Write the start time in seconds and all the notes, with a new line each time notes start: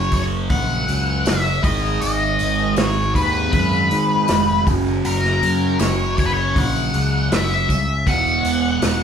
Already playing: F#1 F#2 C#3 F#3 C#5
0.11 C#5, kick, open hi-hat, tambourine
0.50 A#1 F#5, kick, open hi-hat
0.70 tambourine
0.88 C#2, open hi-hat, tambourine
1.26 F#1 E5, snare, open hi-hat, tambourine
1.46 tambourine
1.63 G#1 G#2 D#3 G#3 D#5, kick, open hi-hat, tambourine
1.83 tambourine
2.01 G#1 D#5, open hi-hat, tambourine
2.39 G#1, open hi-hat, tambourine
2.59 tambourine
2.76 G#1 C#5, snare, open hi-hat, tambourine
3.15 D#2 B4, kick, open hi-hat, tambourine
3.53 F#2 B4, kick, open hi-hat
3.72 tambourine
3.91 G#2, open hi-hat, tambourine
4.28 F1 G#2 D#3, snare, open hi-hat, tambourine
4.33 G#3
4.47 tambourine
4.67 F#1 F#2 C#3, kick, open hi-hat, tambourine
4.71 F#3
4.87 tambourine
5.05 F#1 A#4, open hi-hat, tambourine
5.24 snare
5.42 F#2, open hi-hat, tambourine
5.61 tambourine
5.79 F#1 C#5, snare, open hi-hat, tambourine
6.18 C#5, kick, open hi-hat, tambourine
6.26 B4
6.34 C#5
6.56 A#1 F#5, kick, open hi-hat
6.76 tambourine
6.94 C#2, open hi-hat, tambourine
7.31 F#1 F#2 C#3 F#3 E5, snare, open hi-hat, tambourine
7.51 tambourine
7.69 C#2, kick, open hi-hat, tambourine
8.06 E1 E2 B2 E3 F#5, kick, open hi-hat, tambourine
8.27 tambourine
8.44 E1, open hi-hat, tambourine
8.65 tambourine
8.82 E1, snare, open hi-hat, tambourine